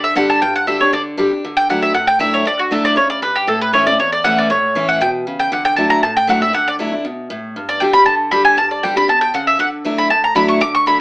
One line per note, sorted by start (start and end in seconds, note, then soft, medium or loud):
0.00 0.14 D3 medium
0.00 0.16 E5 loud
0.15 0.40 D3 loud
0.15 0.40 G3 loud
0.15 0.41 D4 loud
0.15 0.41 G4 loud
0.15 0.29 F#5 medium
0.30 0.41 A5 loud
0.42 0.91 G2 loud
0.42 0.55 G5 medium
0.56 0.67 F#5 loud
0.67 0.80 D3 medium
0.67 0.80 G3 medium
0.67 0.80 D4 loud
0.67 0.79 G4 loud
0.67 0.80 E5 medium
0.80 0.93 D4 medium
0.80 0.92 G4 medium
0.80 0.93 C#5 medium
0.93 1.16 D3 medium
0.93 1.01 D5 medium
1.17 1.31 D3 medium
1.17 1.31 G3 loud
1.17 1.31 D4 loud
1.17 1.30 G4 loud
1.31 1.44 D4 soft
1.31 1.43 G4 medium
1.45 1.93 D3 loud
1.57 1.69 G5 loud
1.69 1.94 F#3 medium
1.69 1.94 A3 loud
1.69 1.94 D4 loud
1.69 1.94 E4 loud
1.69 1.82 F#5 medium
1.82 1.94 E5 medium
1.94 2.43 A2 loud
1.94 2.07 F#5 medium
2.07 2.20 G5 loud
2.19 2.44 F#3 loud
2.19 2.44 A3 loud
2.19 2.45 D4 loud
2.19 2.45 E4 loud
2.19 2.33 E5 medium
2.34 2.46 C#5 medium
2.45 2.94 D3 loud
2.45 2.59 D5 loud
2.59 2.71 F#4 medium
2.71 2.95 F#3 medium
2.71 2.96 A3 medium
2.71 2.96 D4 loud
2.71 2.96 E4 medium
2.71 2.84 A4 medium
2.85 2.96 D5 loud
2.96 3.21 C#3 medium
2.96 3.09 C#5 medium
3.10 3.22 D5 loud
3.22 3.47 G2 loud
3.22 3.35 B4 medium
3.36 3.48 G4 medium
3.47 3.96 A2 loud
3.47 3.61 A4 medium
3.61 3.73 B4 loud
3.73 3.86 E3 medium
3.73 3.86 A3 medium
3.73 3.86 C#4 medium
3.73 3.85 E4 loud
3.73 3.86 C#5 medium
3.86 3.99 C#4 medium
3.86 3.98 E4 medium
3.86 3.99 D5 loud
3.99 4.48 E2 loud
3.99 4.12 C#5 medium
4.12 4.24 D5 loud
4.24 4.49 E3 loud
4.24 4.49 A3 loud
4.24 4.49 C#4 loud
4.24 4.50 E4 loud
4.24 4.37 F#5 loud
4.38 4.50 D5 medium
4.50 4.98 A2 loud
4.50 4.86 C#5 medium
4.75 5.00 E3 medium
4.75 5.00 A3 medium
4.75 5.00 C#4 medium
4.75 5.00 E4 loud
4.89 5.01 F#5 loud
5.01 5.25 B2 medium
5.01 5.09 G5 loud
5.27 5.51 C#3 medium
5.39 5.52 G5 loud
5.52 6.00 D3 loud
5.52 5.65 F#5 medium
5.65 5.76 G5 loud
5.76 6.02 F#3 medium
5.76 6.02 A3 medium
5.76 6.02 D4 medium
5.76 6.02 E4 loud
5.76 5.90 A5 medium
5.90 6.02 A#5 loud
6.03 6.51 A2 medium
6.03 6.16 A5 loud
6.17 6.28 G5 loud
6.27 6.41 F#3 loud
6.27 6.41 A3 loud
6.27 6.41 D4 loud
6.27 6.40 E4 loud
6.27 6.41 F#5 medium
6.41 6.54 D4 medium
6.41 6.53 E4 medium
6.41 6.54 E5 medium
6.53 7.02 D3 loud
6.53 6.67 F#5 loud
6.68 6.75 D5 loud
6.79 6.92 F#3 medium
6.79 6.92 A3 medium
6.79 6.92 D4 loud
6.79 6.91 E4 medium
6.92 7.05 D4 medium
6.92 7.04 E4 medium
7.05 7.29 B2 medium
7.30 7.54 A2 loud
7.56 8.04 G2 loud
7.69 7.81 D5 loud
7.80 7.94 D3 medium
7.80 7.94 G3 medium
7.80 7.94 D4 medium
7.80 7.93 G4 medium
7.80 7.93 G5 medium
7.93 8.07 D4 soft
7.93 8.06 G4 medium
7.93 8.05 B5 loud
8.06 8.30 D3 medium
8.06 8.14 A5 loud
8.31 8.56 D3 loud
8.31 8.56 G3 medium
8.31 8.57 D4 loud
8.31 8.57 G4 loud
8.31 8.44 B5 loud
8.45 8.57 G#5 loud
8.57 9.06 G2 loud
8.57 8.71 A5 loud
8.71 8.83 D5 medium
8.83 8.96 D3 medium
8.83 8.96 G3 medium
8.83 8.96 D4 medium
8.83 8.95 G4 loud
8.83 8.96 G5 medium
8.96 9.09 D4 medium
8.96 9.08 G4 medium
8.96 9.09 B5 loud
9.08 9.33 B2 medium
9.08 9.21 A5 loud
9.21 9.33 G5 loud
9.34 9.58 C#3 loud
9.34 9.47 F#5 medium
9.47 9.59 E5 medium
9.59 10.08 D3 loud
9.59 9.68 F#5 loud
9.85 10.09 F#3 medium
9.85 10.09 A3 loud
9.85 10.09 D4 medium
9.85 10.10 E4 loud
9.98 10.10 B5 loud
10.10 10.59 A2 medium
10.10 10.23 A5 medium
10.24 10.35 A#5 loud
10.35 10.60 F#3 medium
10.35 10.60 A3 loud
10.35 10.60 D4 loud
10.35 10.61 E4 loud
10.35 10.48 B5 loud
10.48 10.61 C#6 medium
10.61 11.01 D3 loud
10.61 10.74 D6 loud
10.75 10.87 C#6 loud
10.86 10.99 F#3 medium
10.86 11.00 A3 loud
10.86 11.00 D4 medium
10.86 10.98 E4 loud
10.86 10.99 B5 medium